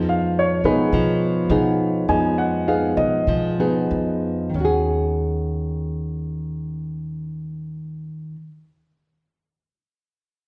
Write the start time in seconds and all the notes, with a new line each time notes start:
Already playing: F2 F3 B3 D#4 G#4
0.09 F5
0.39 C#5
0.64 B2 G#3 B3 D#4 G#4 B4
0.92 B2 F3
1.49 B2 B3 D#4 G#4
2.08 F2 F3 G#3 B3 D#4 G#5
2.38 F#5
2.68 B3 D#4 G#4 F5
2.97 B2 D#5
3.27 B2 F3
3.60 B3 D#4 G#4
3.91 F2
4.49 D#3
4.54 D#2 C#4
4.60 F#4
4.65 G#4